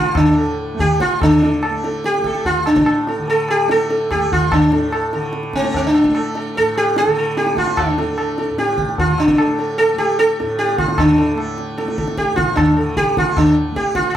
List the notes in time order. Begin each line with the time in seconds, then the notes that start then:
Already playing: A2 D3 A3 F4
0.15 D4, tabla na, tabla ge
0.25 A3
0.38 A4
0.74 A3
0.79 G4, tabla tin, tabla ge
1.00 F4, tabla ke
1.21 D3 D4 A4, tabla na, tabla ge
1.42 A4, tabla te
1.63 A4, tabla na
1.70 A3
1.84 A4, tabla te
2.04 G4, tabla te
2.14 tabla te
2.20 A3
2.24 A4, tabla ke
2.35 tabla te
2.45 F4, tabla tin, tabla ge
2.66 A2 D4, tabla na
2.76 tabla ke
2.86 tabla na
3.07 A4, tabla te
3.18 D3
3.28 A4, tabla tin
3.49 G4, tabla na
3.67 A3 A4, tabla te
3.89 A4, tabla te
4.11 G4, tabla na, tabla ge
4.15 A3
4.32 F4, tabla ge
4.52 D4, tabla na, tabla ge
4.65 A2
4.72 A4, tabla te
4.92 A4, tabla na
5.13 D3 A4, tabla te
5.33 tabla te
5.43 tabla te
5.53 C4, tabla ke
5.61 A3, tabla te
5.74 C4, tabla tin, tabla ge
5.87 D4
5.94 tabla na
6.04 tabla ke
6.09 A3
6.15 A4, tabla na
6.35 A4, tabla te
6.55 A2 A4, tabla tin
6.76 G4, tabla na
6.96 A4, tabla te
7.06 D3
7.17 A4, tabla te
7.37 G4, tabla te
7.47 tabla te
7.54 A3 F4, tabla ke
7.67 tabla te
7.77 D4, tabla na, tabla ge
7.98 A4, tabla te
8.03 A3
8.18 A4, tabla na
8.38 A4, tabla te
8.50 A2
8.58 G4, tabla te
8.69 tabla te
8.78 tabla ke
8.89 tabla te
8.97 D3 F4, tabla tin, tabla ge
9.18 D4, tabla na
9.28 tabla ke
9.38 A4, tabla na
9.46 A3
9.59 A4, tabla te
9.78 A4, tabla tin
9.94 A3
9.98 G4, tabla na
10.19 A4, tabla te
10.39 A2 A4, tabla te
10.59 G4, tabla te
10.69 tabla te
10.78 F4, tabla ke
10.88 D3, tabla te
10.98 D4, tabla na, tabla ge
11.18 A4, tabla te
11.35 A3, tabla na
11.58 tabla te
11.77 A4, tabla te
11.84 A3, tabla te
11.98 A4, tabla ke
12.08 tabla te
12.18 G4, tabla ke
12.30 A2
12.36 F4, tabla ke
12.56 D4, tabla na, tabla ge
12.77 D3 A4
12.97 G4, tabla ke
13.17 F4, tabla ke
13.24 A3
13.37 D4, tabla na, tabla ge
13.72 A3
13.76 G4, tabla ke
13.95 F4, tabla ke
14.10 F4